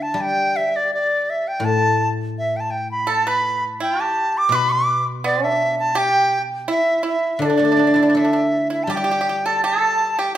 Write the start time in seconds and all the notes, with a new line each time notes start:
Already playing: D3 D4 E4 A4
0.02 A5
0.11 G3 A5
0.21 G5
0.56 E5
0.76 D5
0.94 D5
1.30 E5
1.48 G5
1.60 A2
1.65 A5
2.39 E5
2.56 G5 A5
2.71 G5
2.91 B5
3.07 A4 A5
3.27 B4 B5
3.80 E4 G5
4.00 G4 A5
4.38 D6
4.49 B2 B4
4.55 B5
4.72 D6
5.24 B3 D5
5.43 D4 E5
5.79 A5
5.95 G4 G5
6.68 E4 E5
7.03 E4
7.09 E5
7.36 D3 E5
7.42 D4 D5
7.50 D4
7.58 A3 D4
7.65 D4
7.72 D4
7.77 D4
7.87 D4
7.94 D4 E4
8.03 D4
8.10 D4
8.15 D4 A4 E5
8.25 D4
8.33 D4
8.70 E4 E5
8.84 G3 A5
8.90 G4 G5
8.97 G4
9.04 G4
9.11 G4
9.21 G4
9.29 G4
9.46 A4 A5
9.64 A4 A5
10.19 G4 G5